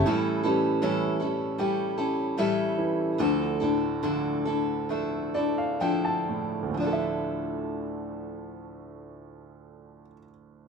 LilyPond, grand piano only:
<<
  \new Staff \with { instrumentName = "Grand piano" } { \time 4/4 \key d \minor \tempo 4 = 68 r1 | r2 r8 d''16 f''16 g''16 a''8. | r1 | }
  \new Staff \with { instrumentName = "Grand piano" } { \clef bass \time 4/4 \key d \minor a,8 e8 cis'4 g'4 e'8 e8 | d,8 a,8 d4 a4 f8 a,8 | <d, a, f d' a' e''>1 | }
>>